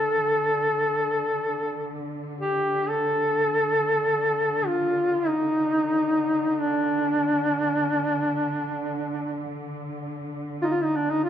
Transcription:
Already playing: D3 A4
0.25 D3
2.40 G4
2.90 A4
4.67 F4
5.27 D#4
6.61 D4
10.62 D#4 F4
10.70 F4
10.77 D#4
10.96 D4
11.10 D#4
11.23 F4

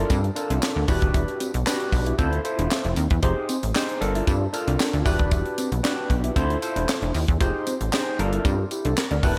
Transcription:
Already playing: D4 F4 A4 A#4
0.10 G2 C4, kick, closed hi-hat, tambourine
0.24 muted clean electric guitar stroke, closed hi-hat
0.36 D4 F4 A4 A#4, closed hi-hat, tambourine
0.50 C2 D4, closed hi-hat
0.62 snare, clap, tambourine
0.76 D2 D4
0.88 E1 D4 E4 F#4 G4 B4, kick, open hi-hat, tambourine
1.02 D#1, kick, closed hi-hat
1.14 E1 E4, kick, closed hi-hat, tambourine
1.28 muted clean electric guitar stroke, closed hi-hat
1.40 C4, closed hi-hat, tambourine
1.54 B1, closed hi-hat
1.66 D4 F#4 G4 B4, snare, clap, tambourine
1.80 closed hi-hat
1.92 B1, muted clean electric guitar stroke, kick, open hi-hat, tambourine
2.06 E4, closed hi-hat
2.18 D2 C4 E4 F4 A4 C5, kick, closed hi-hat, tambourine
2.33 muted clean electric guitar stroke, closed hi-hat
2.44 E4 F4 A4 C5, closed hi-hat, tambourine
2.59 E1 D4, closed hi-hat
2.71 muted clean electric guitar stroke, snare, clap, tambourine
2.84 F1 E4, closed hi-hat
2.96 D#2 C4, closed hi-hat, tambourine
3.10 E2, kick, closed hi-hat
3.22 F1 D#4 F4 G4 G#4 C5, kick, closed hi-hat
3.37 muted clean electric guitar stroke
3.49 C4, closed hi-hat, tambourine
3.63 A1, closed hi-hat
3.74 D4 D#4 G4 G#4 C5, snare, clap, tambourine
3.89 closed hi-hat
4.00 G1 D4 F4 A4 A#4, muted clean electric guitar stroke, closed hi-hat
4.15 E4, closed hi-hat
4.27 G2 C4, kick, closed hi-hat, tambourine
4.41 muted clean electric guitar stroke
4.53 D4 F4 A4 A#4, closed hi-hat, tambourine
4.67 C2 D4, closed hi-hat
4.79 muted clean electric guitar stroke, snare, clap, tambourine
4.93 D2 D4, closed hi-hat
5.05 E1 D4 E4 F#4 G4 B4, kick, open hi-hat, tambourine
5.19 D#1, kick, closed hi-hat
5.31 E1 E4, kick, closed hi-hat, tambourine
5.46 muted clean electric guitar stroke, closed hi-hat
5.58 C4, closed hi-hat, tambourine
5.72 B1, closed hi-hat
5.83 D4 F#4 G4 B4, snare, clap, tambourine
6.10 B1, muted clean electric guitar stroke, kick, closed hi-hat
6.24 E4, closed hi-hat
6.36 D2 C4 E4 F4 A4 C5, kick, closed hi-hat, tambourine
6.50 muted clean electric guitar stroke, closed hi-hat
6.62 E4 F4 A4 C5, closed hi-hat, tambourine
6.76 E1 D4, closed hi-hat
6.88 muted clean electric guitar stroke, snare, clap, tambourine
7.02 F1 D4, closed hi-hat
7.14 D#2 E4, open hi-hat, tambourine
7.28 E2, kick, closed hi-hat
7.40 F1 D#4 F4 G4 G#4 C5, kick, closed hi-hat, tambourine
7.55 muted clean electric guitar stroke
7.67 C4, closed hi-hat, tambourine
7.81 A1, closed hi-hat
7.92 D4 D#4 G4 G#4 C5, snare, clap, tambourine
8.19 G1 D4 F4 A4 A#4, muted clean electric guitar stroke, closed hi-hat
8.33 E4, closed hi-hat
8.45 G2 C4, kick, closed hi-hat, tambourine
8.59 muted clean electric guitar stroke
8.71 E4 G4, closed hi-hat, tambourine
8.85 C2 D4 F4 A4, closed hi-hat
8.97 G4 A#4, muted clean electric guitar stroke, snare, clap, tambourine
9.11 D2 D4 A#4 D5, closed hi-hat
9.23 E1 D4 E4 F#4 G4 B4, kick, open hi-hat, tambourine

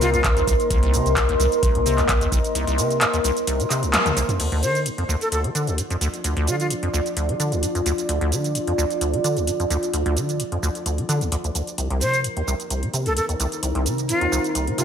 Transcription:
Already playing: C2 A#4 D#5 C6
0.01 C3 F4, open hi-hat, cabasa
0.14 C2 F4, closed hi-hat, cabasa
0.24 C2 G2, kick, clap, closed hi-hat, cabasa
0.37 D#2, closed hi-hat, cabasa
0.47 C2, kick, open hi-hat, cabasa
0.60 closed hi-hat, cabasa
0.70 C2, kick, closed hi-hat, cabasa
0.83 C2, closed hi-hat
0.94 C3, open hi-hat, cabasa
1.06 C2, closed hi-hat, cabasa
1.17 G2, kick, clap, closed hi-hat, cabasa
1.29 D#2, closed hi-hat
1.40 C2, open hi-hat, cabasa
1.52 closed hi-hat, cabasa
1.63 C2, kick, closed hi-hat, cabasa
1.75 C2 C3, closed hi-hat
1.86 C3, open hi-hat, cabasa
1.98 C2, clap, closed hi-hat, cabasa
2.09 C2 G2, kick, clap, closed hi-hat, cabasa
2.21 D#2, closed hi-hat, cabasa
2.32 C2, kick, open hi-hat, cabasa
2.44 closed hi-hat, cabasa
2.55 C2, closed hi-hat, cabasa
2.67 C2, closed hi-hat, cabasa
2.78 C3, open hi-hat, cabasa
2.91 closed hi-hat, cabasa
3.01 G2, clap, closed hi-hat, cabasa
3.14 D#2, closed hi-hat, cabasa
3.24 C2, open hi-hat, cabasa
3.37 closed hi-hat, cabasa
3.47 C2, closed hi-hat, cabasa
3.60 C3, closed hi-hat, cabasa
3.70 C3, clap, open hi-hat, cabasa
3.83 C2, closed hi-hat, cabasa
3.93 G2, snare, clap, closed hi-hat, cabasa
4.06 D#2, closed hi-hat, high tom, cabasa
4.17 C2, open hi-hat, cabasa
4.29 closed hi-hat, mid tom, cabasa
4.40 D2 F4 D5, closed hi-hat, crash, cabasa
4.52 D2 D5, closed hi-hat
4.63 D3 C5, closed hi-hat, cabasa
4.75 closed hi-hat, cabasa
4.86 A2, closed hi-hat, cabasa
4.98 F2, closed hi-hat
5.09 D2, cabasa
5.21 A4, closed hi-hat, cabasa
5.32 D2 A4, closed hi-hat, cabasa
5.44 D3, closed hi-hat
5.55 D3, closed hi-hat, cabasa
5.67 D2, closed hi-hat, cabasa
5.78 A2, closed hi-hat, cabasa
5.90 F2, closed hi-hat, cabasa
6.01 D2, closed hi-hat, cabasa
6.14 closed hi-hat, cabasa
6.24 D2, closed hi-hat, cabasa
6.37 D2, closed hi-hat
6.47 D3 F4, closed hi-hat, cabasa
6.60 F4, closed hi-hat, cabasa
6.70 A2, closed hi-hat, cabasa
6.83 F2, closed hi-hat
6.94 D2, cabasa
7.06 closed hi-hat, cabasa
7.17 D2, closed hi-hat, cabasa
7.29 D3, closed hi-hat
7.40 D3, closed hi-hat, cabasa
7.52 D2, closed hi-hat, cabasa
7.63 A2, closed hi-hat, cabasa
7.75 F2, closed hi-hat, cabasa
7.86 D2, closed hi-hat, cabasa
7.98 closed hi-hat, cabasa
8.09 D2, closed hi-hat, cabasa
8.21 D2, closed hi-hat
8.32 D3, closed hi-hat, cabasa
8.44 closed hi-hat, cabasa
8.55 A2, closed hi-hat, cabasa
8.67 F2, closed hi-hat
8.78 D2, cabasa
8.90 closed hi-hat, cabasa
9.01 D2, closed hi-hat, cabasa
9.13 D3, closed hi-hat
9.24 D3, closed hi-hat, cabasa
9.37 D2, closed hi-hat, cabasa
9.47 A2, closed hi-hat, cabasa
9.60 F2, closed hi-hat, cabasa
9.70 D2, closed hi-hat, cabasa
9.83 closed hi-hat, cabasa
9.93 D2, closed hi-hat, cabasa
10.06 D2, closed hi-hat
10.17 D3, closed hi-hat, cabasa
10.29 closed hi-hat, cabasa
10.40 A2, closed hi-hat, cabasa
10.52 F2, closed hi-hat
10.63 D2, cabasa
10.75 closed hi-hat, cabasa
10.86 D2, closed hi-hat, cabasa
10.98 D3, closed hi-hat
11.09 D3, closed hi-hat, cabasa
11.21 D2, closed hi-hat, cabasa
11.32 D2, closed hi-hat, cabasa
11.44 D2, closed hi-hat, cabasa
11.55 D2, closed hi-hat, cabasa
11.67 closed hi-hat, cabasa
11.78 C2 D#4 A#4, closed hi-hat, cabasa
11.90 C2, closed hi-hat
12.01 C3 C5, closed hi-hat, cabasa
12.10 A#5, closed hi-hat
12.14 cabasa
12.24 G2 C5, closed hi-hat, cabasa
12.37 D#2, closed hi-hat
12.47 C2, cabasa
12.60 closed hi-hat, cabasa
12.70 C2, closed hi-hat, cabasa
12.83 C3, closed hi-hat
12.94 C3, closed hi-hat, cabasa
13.06 C2 A4, closed hi-hat, cabasa
13.17 G2 A4, closed hi-hat, cabasa
13.29 D#2, closed hi-hat, cabasa
13.40 C2, closed hi-hat, cabasa
13.52 closed hi-hat, cabasa
13.63 C2, closed hi-hat, cabasa
13.75 C2, closed hi-hat
13.86 C3, closed hi-hat, cabasa
13.98 closed hi-hat, cabasa
14.09 G2 F4, closed hi-hat, cabasa
14.21 D#2, closed hi-hat
14.32 C2, cabasa
14.44 closed hi-hat, cabasa
14.55 C2, closed hi-hat, cabasa
14.67 C3, closed hi-hat
14.78 C3 F4, closed hi-hat, cabasa

